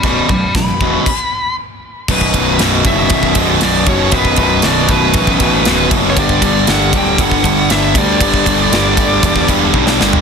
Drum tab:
CC |x---x---x-------|x---------------|----------------|----------------|
RD |----------------|--x-x-x-x-x-x-x-|x-x-x-x-x-x-x-x-|x-x-x-x-x-x-x-x-|
SD |----o-----------|----o-------o---|----o-------o---|----o-------o---|
FT |----------------|----------------|----------------|----------------|
BD |o-o-o-o-o-------|ooo---o-ooo---o-|ooo---o-ooo---o-|ooo---o-ooo---o-|

CC |----------------|
RD |x-x-x-x-x-x-----|
SD |----o--------oo-|
FT |---------------o|
BD |ooo---o-ooo-o---|